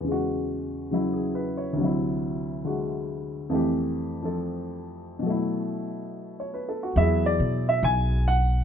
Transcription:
0.01 grand piano E2 C#3
0.08 grand piano G#3 F#4
0.91 grand piano C#3 F#3 E4
1.14 grand piano G#4
1.35 grand piano B4
1.57 grand piano C#5
1.73 grand piano D2 C3
1.81 grand piano F#3 E4
2.65 grand piano D3 G#3 F#4
3.50 grand piano F2 E3 A3
3.55 grand piano G4
4.22 grand piano F3 C4 A4
5.19 grand piano B2 F#3
5.26 grand piano A3 E4
6.40 grand piano C#5
6.54 grand piano B4
6.69 grand piano A4
6.83 grand piano F#4
6.96 upright bass E2, grand piano F#3 B3 E4 G#4 E5
7.26 grand piano D5
7.40 upright bass B2
7.69 grand piano E5
7.83 upright bass B1, grand piano G#5
8.28 grand piano F#5

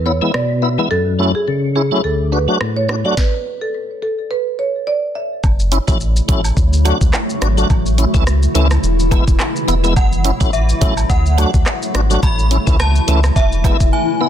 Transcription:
Already playing: tonewheel organ E2
0.06 tonewheel organ B3 E4, marimba C#5
0.21 tonewheel organ E3 G#3 B3 E4
0.34 tonewheel organ B2, marimba D5, cross-stick
0.62 tonewheel organ B3 E4, marimba E5
0.78 tonewheel organ E3 G#3 B3 E4
0.91 tonewheel organ F#2, marimba A4
1.19 tonewheel organ F#3 A3 C#4 E4
1.35 marimba G#4
1.48 tonewheel organ C#3
1.75 tonewheel organ C#4 E4, marimba G#4
1.91 tonewheel organ F#3 A3 C#4 E4
2.04 tonewheel organ D2, marimba A4
2.32 tonewheel organ D4 F#4, marimba B4
2.48 tonewheel organ F#3 A3 D4 F#4
2.61 tonewheel organ A2, cross-stick
2.77 marimba C#5
2.89 tonewheel organ D4 F#4, cross-stick
3.05 tonewheel organ F#3 A3 D4 F#4, marimba D5
3.17 marimba B4, kick, snare
3.61 marimba A4
4.02 marimba A4
4.31 marimba B4
4.59 marimba C#5
4.87 marimba D5
5.15 marimba E5
5.44 sub bass F#1, ambient pad F#3 A3, kick, high woodblock, shaker
5.60 shaker
5.72 tonewheel organ C#4 E4, closed hi-hat, cabasa, shaker
5.87 sub bass A1, tonewheel organ F#3 A3 C#4 E4, kick, shaker
6.00 shaker
6.16 shaker
6.28 sub bass A1, tonewheel organ F#3 A3 C#4 E4, kick, closed hi-hat, cabasa, shaker
6.44 high woodblock, shaker
6.57 sub bass D2, kick, shaker
6.73 shaker
6.85 tonewheel organ F#3 A3 D4 F#4, closed hi-hat, cabasa, high woodblock, shaker
7.01 sub bass C#2, kick, shaker
7.13 cross-stick, clap, high woodblock, shaker
7.29 shaker
7.41 sub bass G#1, tonewheel organ D4 F#4, cross-stick, closed hi-hat, cabasa, shaker
7.57 tonewheel organ F#3 A3 D4 F#4, shaker
7.70 sub bass A1, ambient pad E3 E4, kick, high woodblock, shaker
7.86 shaker
7.98 tonewheel organ C#4 E4, closed hi-hat, cabasa, shaker
8.14 sub bass C#2, tonewheel organ E3 A3 C#4 E4, kick, shaker
8.27 cross-stick, shaker
8.43 shaker
8.55 sub bass C#2, tonewheel organ E3 A3 C#4 E4, closed hi-hat, cabasa, shaker
8.71 cross-stick, high woodblock, shaker
8.83 sub bass E1, shaker
8.99 shaker
9.11 tonewheel organ E3 G#3 B3 E4, kick, closed hi-hat, cabasa, high woodblock, shaker
9.28 sub bass E1, kick, shaker
9.40 cross-stick, clap, high woodblock, shaker
9.56 shaker
9.68 sub bass E1, tonewheel organ B3 E4, closed hi-hat, cabasa, shaker
9.84 tonewheel organ E3 G#3 B3 E4, shaker
9.96 sub bass F#1, ambient pad F#3 A3, synth bell F#5, kick, high woodblock, shaker
10.12 shaker
10.24 tonewheel organ C#4 E4, closed hi-hat, cabasa, shaker
10.40 sub bass A1, tonewheel organ F#3 A3 C#4 E4, kick, shaker
10.53 synth bell E5, shaker
10.69 shaker
10.81 sub bass A1, tonewheel organ F#3 A3 C#4 E4, kick, closed hi-hat, cabasa, shaker
10.97 high woodblock, shaker
11.10 sub bass D2, synth bell F#5, kick, shaker
11.26 shaker
11.38 tonewheel organ F#3 A3 D4 F#4, closed hi-hat, cabasa, high woodblock, shaker
11.54 sub bass C#2, kick, shaker
11.66 cross-stick, clap, high woodblock, shaker
11.82 shaker
11.94 sub bass G#1, tonewheel organ D4 F#4, cross-stick, closed hi-hat, cabasa, shaker
12.10 tonewheel organ F#3 A3 D4 F#4, shaker
12.23 sub bass A1, ambient pad E4, synth bell B5, kick, high woodblock, shaker
12.39 shaker
12.51 tonewheel organ C#4 E4, closed hi-hat, cabasa, shaker
12.67 sub bass C#2, tonewheel organ E3 A3 C#4 E4, kick, shaker
12.79 synth bell A5, cross-stick, high woodblock, shaker
12.95 shaker
13.07 sub bass C#2, tonewheel organ E3 A3 C#4 E4, closed hi-hat, cabasa, shaker
13.24 cross-stick, high woodblock, shaker
13.36 sub bass E1, synth bell E5, kick, shaker
13.52 shaker
13.64 tonewheel organ E3 G#3 B3 E4, kick, closed hi-hat, cabasa, high woodblock, shaker
13.80 sub bass E1, kick, shaker
13.93 synth bell G#5
14.21 tonewheel organ B3 E4

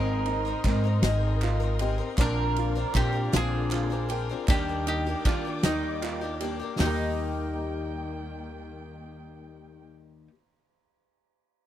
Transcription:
Already playing: upright bass G#1, twelve-string acoustic guitar G#3 C4 D#4 A#4, upright piano C4, mandolin A#4, string section A#4 D#5 A#5 C6
0.26 upright piano D#4, clap, ride, shaker
0.45 twelve-string acoustic guitar C4 D#4 A#4, shaker
0.64 upright bass G#2, twelve-string acoustic guitar G#3 C4 D#4 A#4, upright piano C4, kick, clap, ride
0.84 twelve-string acoustic guitar C4 D#4 A#4
1.02 upright bass G#1, twelve-string acoustic guitar G#3 C4 D#4 A#4, upright piano D#4, snare, ride, shaker
1.41 upright piano F4, clap, ride
1.60 twelve-string acoustic guitar C4 D#4 A#4, shaker
1.79 twelve-string acoustic guitar G#3 C4 D#4 A#4, upright piano G4, ride
1.98 twelve-string acoustic guitar C4 D#4 A#4
2.17 upright bass A#1, twelve-string acoustic guitar A#2 D3 F3 C4 D4 A#4, upright piano D4, mandolin A#4, string section D5 F5, kick, clap, ride, shaker
2.56 upright piano F4, ride, shaker
2.75 twelve-string acoustic guitar F3 C4 D4 A#4, shaker
2.94 upright bass A#2, twelve-string acoustic guitar F3 C4 D4 A#4, upright piano D4, mandolin G4, kick, clap, ride
3.12 twelve-string acoustic guitar F3 C4 D4 A#4
3.32 upright bass A#1, twelve-string acoustic guitar A#2 D3 F3 C4 D4 A#4, upright piano F4, mandolin G#4, snare, ride, shaker
3.71 upright piano F4, clap, ride
3.90 twelve-string acoustic guitar F3 C4 D4 A#4, shaker
4.09 twelve-string acoustic guitar F3 C4 D4 A#4, upright piano G5, ride
4.29 twelve-string acoustic guitar F3 C4 D4 A#4
4.48 upright bass D#2, twelve-string acoustic guitar D#3 G3 A#3 D4 G4, upright piano D4, mandolin G4, string section D5 G5 D6, kick, clap, ride, shaker
4.68 clap, shaker
4.87 upright piano D#4, mandolin G4, ride, shaker
5.06 twelve-string acoustic guitar A#3 D4 G4, shaker
5.25 upright bass D#3, twelve-string acoustic guitar G3 A#3 D4 G4, upright piano D4, mandolin F4, kick, clap, ride, shaker
5.45 twelve-string acoustic guitar A#3 D4 G4
5.63 upright bass D#2, twelve-string acoustic guitar D#3 G3 A#3 G4, upright piano D#4, mandolin D#4, snare, ride, shaker
6.02 upright piano F4, clap, ride, shaker
6.21 twelve-string acoustic guitar A#3 D4 G4, clap
6.40 twelve-string acoustic guitar G3 A#3 D4, upright piano G4, clap, ride
6.44 twelve-string acoustic guitar G4
6.60 twelve-string acoustic guitar A#3 D4 G4
6.77 upright bass D#2, twelve-string acoustic guitar D#3 G3, mandolin D#4, string section G5, snare, clap, open hi-hat, shaker
6.82 string section D#3 A#3, twelve-string acoustic guitar A#3 G4, upright piano G4
6.87 upright piano A#4
6.91 upright piano D#5

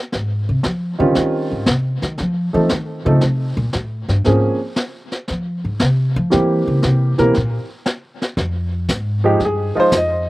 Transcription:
0.12 upright bass G#2, brush sweep, snare
0.49 upright bass C3
0.63 upright bass F3, snare
0.99 upright bass D3, grand piano D#3 G3 C4 C#4 F4
1.15 upright bass D#3, brush sweep, snare
1.52 upright bass G#2
1.66 upright bass C3, snare
2.02 upright bass D#3, snare
2.18 upright bass F3, brush sweep, snare
2.53 upright bass E3, grand piano F3 A3 C4 D#4 A4
2.69 upright bass D#3, snare
3.05 upright bass C#3, grand piano F3 A3 C4 D#4 A4
3.21 upright bass C3, brush sweep, snare
3.57 upright bass A#2
3.73 upright bass A2, snare
4.08 upright bass G2, snare
4.24 upright bass G#2, grand piano F3 A#3 C4 C#4 G#4, brush sweep, snare
4.76 snare
5.12 snare
5.28 upright bass F3, brush sweep, snare
5.65 upright bass G#2
5.79 upright bass C3, snare
6.16 upright bass F3
6.30 grand piano E3 G3 A#3 C4 G4, upright bass E3, brush sweep, snare
6.67 upright bass C#3
6.82 upright bass C3, snare
7.18 upright bass B2, grand piano E3 G3 A#3 C4 A#4, snare
7.34 upright bass A#2, brush sweep, snare
7.86 snare
8.22 snare
8.37 upright bass F2, brush sweep, kick, snare
8.89 upright bass G#2, kick, snare, hi-hat pedal
9.24 grand piano F3 G#3 D#4 G4
9.40 upright bass G2, brush sweep, kick, snare
9.45 grand piano G#4
9.75 grand piano F3 G#3 D#4 F4, muted upright bass stroke
9.80 grand piano C5
9.92 upright bass F2, kick, snare, hi-hat pedal
9.97 grand piano D#5

